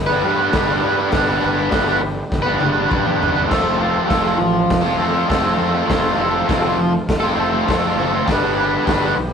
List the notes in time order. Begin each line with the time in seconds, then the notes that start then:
Already playing: G1 D4 G4 B4
0.06 B3 B4
0.12 D4
0.21 G2 G3 B3 D4
0.26 B4
0.36 B3 B4
0.41 D4
0.52 G1 G3 B3 D4 G4 B4, kick, snare, open hi-hat
0.57 B4
0.66 B3 B4
0.72 D4
0.81 G2 G3 B3 D4
0.85 B4
0.96 B3 B4
1.01 D4
1.11 G1 G3 B3 D4, kick, snare, open hi-hat
1.15 D4 G4 B4
1.39 G3 B3 D4
1.44 G1 B4
1.70 G1 G3 B3 D4 G4 B4, kick, snare, open hi-hat
1.75 B4
1.84 B3 B4
1.89 D4
1.99 D4 G4 B4, muted overdriven electric guitar stroke
2.29 G1 D4 G4 B4, kick, snare
2.43 B3 B4
2.48 D4
2.59 G3 B3 D4 B5, high tom
2.63 G1 B4
2.73 B3 B4 A5
2.78 D4
2.88 G2 G3 B3 D4, kick, mid tom
2.93 G4 B4 G5
3.02 B3 B4
3.06 D4, mid tom
3.18 G1 G3 B3 D4 E5
3.22 B4, floor tom
3.33 B3 B4, floor tom
3.38 D4
3.46 F3 A3 C4 F4
3.50 F1 F4 A4 C5, kick, snare, crash, splash
3.76 A3 C4 F4
3.82 A4
4.06 F3 A3 C4 F4 A4
4.10 F1 F4 A4 C5, kick, snare, open hi-hat
4.20 F4 A4
4.25 C4
4.38 A1 F4 A4 C5, muted overdriven electric guitar stroke
4.66 F4 A4 C5
4.70 F1, kick, snare, open hi-hat
4.81 F4 A4
4.87 C4
4.97 F2 A3 C4 F4
5.02 A4
5.12 F4 A4
5.17 C4
5.26 F3 A3 C4 F4 A4
5.30 F1 A4 C5, kick, snare, open hi-hat
5.41 F4 A4
5.45 C4
5.55 F2 A3 C4 F4
5.60 A4
5.70 F4 A4
5.75 C4
5.85 F3 A3 C4 F4 A4 B4
5.90 F1 F4 A4, kick, snare, open hi-hat
6.15 F1 A3 C4
6.19 F4 A4
6.46 F1 F3 A3 C4 F4 A4 B4, kick, open hi-hat
6.50 F4 A4, snare
6.62 F4 A4
6.68 C4
6.78 F4 A4 C5, muted overdriven electric guitar stroke
7.07 F1 F4 A4 C5, kick, snare, open hi-hat
7.20 F4 A4
7.26 C4
7.36 F1 A3 C4 F4
7.40 A4
7.50 F4 A4
7.55 C4
7.66 F2 F3 A3 C4 F4 A4, kick, open hi-hat
7.70 F4 A4 C5, snare
7.80 F4 A4
7.86 C4
7.96 F#1 A3 C4 F4
8.01 A4
8.10 F4 A4
8.15 C4
8.25 G1 G3 D4 G4 B4 D5, kick, open hi-hat
8.29 B3 B4, snare
8.56 G3 B3 D4
8.61 B4
8.85 G1 G3 D4 G4 B4 D5, kick, snare, open hi-hat
8.90 B3 B4
9.00 B3 B4
9.05 D4
9.14 B1 G4 B4 D5, muted overdriven electric guitar stroke